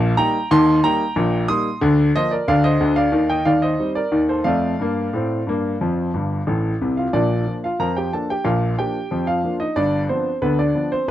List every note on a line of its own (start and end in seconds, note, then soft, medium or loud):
0.00 0.12 A#1 loud
0.00 0.12 A#2 loud
0.00 0.14 F5 medium
0.00 0.14 A5 loud
0.17 0.35 G3 medium
0.17 0.36 A#3 medium
0.17 0.36 D#4 medium
0.17 0.48 G5 medium
0.17 0.48 A#5 loud
0.51 0.78 D#2 loud
0.51 0.78 D#3 loud
0.51 0.82 A5 medium
0.51 0.82 C6 loud
0.84 1.01 G3 medium
0.84 1.02 A#3 medium
0.84 1.02 D#4 medium
0.84 1.46 G5 medium
0.84 1.46 A#5 loud
1.16 1.44 A#1 medium
1.16 1.44 A#2 medium
1.48 1.67 G3 medium
1.48 1.67 A#3 medium
1.48 1.67 D#4 medium
1.48 1.80 C6 medium
1.48 1.80 D#6 loud
1.81 2.10 D2 loud
1.81 2.09 D3 loud
2.15 2.33 F3 medium
2.15 2.34 A#3 medium
2.15 2.34 F4 medium
2.15 2.31 C5 medium
2.15 2.31 D#5 loud
2.31 2.47 A#4 medium
2.31 2.47 D5 medium
2.48 2.76 D2 medium
2.48 2.76 D3 medium
2.48 2.63 D5 medium
2.48 2.64 F5 loud
2.64 2.95 C5 medium
2.64 2.95 D#5 loud
2.80 3.07 D2 medium
2.80 3.07 D3 medium
2.96 3.28 D5 medium
2.96 3.28 F5 loud
3.12 3.39 D#2 medium
3.12 3.39 D#3 medium
3.30 3.46 D#5 medium
3.30 3.46 G5 medium
3.45 3.73 D#2 medium
3.45 3.73 D#3 medium
3.45 3.62 D5 medium
3.45 3.62 F5 medium
3.62 3.94 C5 medium
3.62 3.89 D#5 medium
3.79 3.98 G3 medium
3.79 3.98 C4 medium
3.79 3.98 D#4 medium
3.95 4.28 A#4 medium
3.95 4.23 D5 medium
4.12 4.39 D#2 medium
4.12 4.39 D#3 medium
4.29 4.46 A4 medium
4.29 4.46 C5 medium
4.44 4.72 F2 medium
4.44 4.74 A3 medium
4.44 6.76 D5 medium
4.44 6.75 F5 loud
4.80 5.07 G2 medium
4.80 5.08 A#3 medium
5.13 5.40 A2 medium
5.13 5.42 C4 medium
5.47 5.74 G2 medium
5.47 5.75 A#3 medium
5.81 6.09 F2 medium
5.81 6.09 F3 medium
6.14 6.39 G1 medium
6.14 6.39 G2 medium
6.47 6.72 A1 medium
6.47 6.72 A2 medium
6.81 7.06 C2 medium
6.81 7.06 C3 medium
6.97 7.14 F4 medium
6.97 7.14 F5 medium
7.13 7.42 A#1 medium
7.13 7.42 A#2 medium
7.13 7.46 D4 medium
7.13 7.53 D5 medium
7.47 7.65 F3 soft
7.47 7.65 A#3 soft
7.47 7.65 D4 soft
7.64 7.80 F4 medium
7.64 7.80 F5 medium
7.79 8.07 F2 medium
7.79 8.08 F3 medium
7.79 7.95 A#4 medium
7.79 7.96 A#5 medium
7.97 8.12 G4 medium
7.97 8.13 G5 medium
8.13 8.32 F3 soft
8.13 8.32 A#3 soft
8.13 8.32 D4 medium
8.13 8.29 A4 medium
8.13 8.29 A5 medium
8.30 8.46 G4 medium
8.30 8.46 G5 medium
8.44 8.73 A#1 medium
8.44 8.73 A#2 medium
8.44 8.76 F4 medium
8.44 8.76 F5 medium
8.78 8.96 F3 soft
8.78 8.97 A#3 soft
8.78 8.97 D4 medium
8.78 9.25 G4 medium
8.78 9.25 G5 medium
9.11 9.39 F2 medium
9.11 9.39 F3 medium
9.27 9.58 F4 medium
9.27 9.54 F5 medium
9.44 9.62 F3 soft
9.44 9.62 A#3 soft
9.44 9.63 D4 soft
9.60 9.76 D#4 medium
9.60 9.77 D#5 medium
9.76 10.04 G1 medium
9.76 10.04 G2 medium
9.76 10.08 D4 medium
9.76 10.03 D5 medium
10.09 10.27 F3 soft
10.09 10.28 B3 soft
10.09 10.40 C4 medium
10.09 10.28 D4 soft
10.09 10.36 C5 medium
10.42 10.70 D2 medium
10.42 10.70 D3 medium
10.42 10.58 B3 medium
10.42 10.59 B4 medium
10.59 10.74 D4 medium
10.59 10.90 D5 medium
10.75 10.93 F3 soft
10.75 10.93 B3 soft
10.75 10.94 D4 medium
10.92 11.08 C4 medium
10.92 11.08 C5 medium